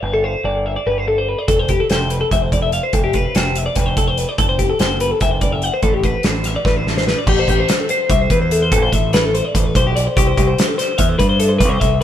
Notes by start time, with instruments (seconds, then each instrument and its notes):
0.03 picked electric bass G1, clean electric guitar B4
0.14 clean electric guitar A4
0.24 clean electric guitar C5
0.44 picked electric bass G1, clean electric guitar D5
0.66 clean electric guitar E5
0.76 clean electric guitar D5
0.87 picked electric bass G1, clean electric guitar B4
0.98 clean electric guitar C5
1.08 clean electric guitar A4
1.18 clean electric guitar C5
1.29 clean electric guitar B4
1.39 clean electric guitar D5
1.48 picked electric bass F1, clean electric guitar A4, kick, closed hi-hat
1.59 clean electric guitar C5
1.68 clean electric guitar G4, kick, closed hi-hat
1.80 clean electric guitar A4
1.90 picked electric bass F1, clean electric guitar C5, snare, closed hi-hat
2.10 clean electric guitar B4, closed hi-hat
2.21 clean electric guitar A4
2.31 picked electric bass F1, clean electric guitar E5, kick, closed hi-hat
2.42 clean electric guitar C5
2.52 clean electric guitar D5, kick, closed hi-hat
2.62 clean electric guitar E5
2.72 clean electric guitar F5, closed hi-hat
2.83 clean electric guitar C5
2.93 picked electric bass F1, clean electric guitar A4, kick, closed hi-hat
3.04 clean electric guitar G4
3.13 clean electric guitar B4, kick, closed hi-hat
3.35 picked electric bass F1, clean electric guitar C5, snare, closed hi-hat
3.56 clean electric guitar E5, closed hi-hat
3.66 clean electric guitar D5
3.75 picked electric bass F1, clean electric guitar B4, kick, snare, closed hi-hat
3.86 clean electric guitar C5
3.97 clean electric guitar A4, kick, closed hi-hat
4.08 clean electric guitar C5
4.17 clean electric guitar B4, closed hi-hat
4.29 clean electric guitar D5
4.38 picked electric bass F#1, clean electric guitar A4, kick, closed hi-hat
4.49 clean electric guitar C5
4.59 clean electric guitar G4, kick, closed hi-hat
4.70 clean electric guitar A4
4.79 picked electric bass F#1, clean electric guitar C5, snare, closed hi-hat
5.00 clean electric guitar B4, closed hi-hat
5.11 clean electric guitar A4
5.21 picked electric bass F#1, clean electric guitar E5, kick, closed hi-hat
5.31 clean electric guitar C5
5.41 clean electric guitar D5, kick, closed hi-hat
5.52 clean electric guitar E5
5.62 clean electric guitar F#5, closed hi-hat
5.74 clean electric guitar C5
5.82 picked electric bass A1, clean electric guitar A4, kick, closed hi-hat
5.94 clean electric guitar G4
6.03 clean electric guitar B4, kick, closed hi-hat
6.23 picked electric bass A1, clean electric guitar C5, snare, closed hi-hat
6.44 clean electric guitar E5, snare, closed hi-hat
6.56 clean electric guitar D5
6.65 picked electric bass A1, clean electric guitar B4, kick, snare
6.76 clean electric guitar C5
6.87 clean electric guitar A4, snare
6.97 clean electric guitar C5, snare
7.07 clean electric guitar B4, snare
7.18 clean electric guitar D5
7.27 picked electric bass A1, clean electric guitar G4, kick, crash
7.39 clean electric guitar C5
7.48 picked electric bass A1, clean electric guitar G4, kick, closed hi-hat
7.60 clean electric guitar C5
7.68 snare, closed hi-hat
7.80 clean electric guitar A4
7.89 clean electric guitar C5, closed hi-hat
8.10 picked electric bass C2, clean electric guitar E5, kick, closed hi-hat
8.21 clean electric guitar C5
8.30 picked electric bass E2, clean electric guitar B4, kick, closed hi-hat
8.42 clean electric guitar C5
8.51 clean electric guitar A4, closed hi-hat
8.62 clean electric guitar C5
8.72 picked electric bass A1, clean electric guitar A4, kick, closed hi-hat
8.82 clean electric guitar C5
8.92 picked electric bass A1, clean electric guitar E5, kick, closed hi-hat
9.13 clean electric guitar B4, snare, closed hi-hat
9.24 clean electric guitar A4
9.34 clean electric guitar C5, closed hi-hat
9.45 clean electric guitar D5
9.55 picked electric bass A1, clean electric guitar C5, kick, closed hi-hat
9.66 clean electric guitar B4
9.75 picked electric bass B1, clean electric guitar C5, kick, closed hi-hat
9.87 clean electric guitar G4
9.96 clean electric guitar D5, closed hi-hat
10.07 clean electric guitar C5
10.17 picked electric bass C2, clean electric guitar G4, kick, closed hi-hat
10.27 clean electric guitar C5
10.38 picked electric bass C2, clean electric guitar G4, kick, closed hi-hat
10.47 clean electric guitar C5
10.58 snare, closed hi-hat
10.68 clean electric guitar A4
10.78 clean electric guitar C5, snare, closed hi-hat
10.98 picked electric bass E2, clean electric guitar E5, kick, closed hi-hat
11.09 clean electric guitar C5
11.19 picked electric bass G2, clean electric guitar B4, kick, closed hi-hat
11.29 clean electric guitar C5
11.39 clean electric guitar A4, closed hi-hat
11.49 clean electric guitar C5
11.59 picked electric bass C2, clean electric guitar B4, kick, closed hi-hat
11.69 clean electric guitar C5
11.80 picked electric bass C2, clean electric guitar E5, kick, closed hi-hat